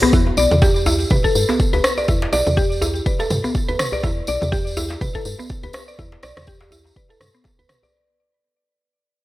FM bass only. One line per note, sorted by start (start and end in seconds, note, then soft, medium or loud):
0.13 0.31 E2 loud
0.37 0.47 B1 loud
0.51 1.06 E2 medium
1.35 1.45 G2 medium
1.74 1.81 D2 medium
2.09 2.27 E2 loud
2.33 2.42 B1 loud
2.47 3.01 E2 medium
3.31 3.40 G2 medium
3.69 3.76 D2 medium
4.04 4.22 E2 loud
4.28 4.38 B1 loud
4.42 4.96 E2 medium
5.25 5.35 G2 medium
5.64 5.71 D2 medium
5.99 6.17 E2 loud
6.23 6.33 B1 loud
6.37 6.91 E2 medium
7.20 7.30 G2 medium
7.59 7.66 D2 medium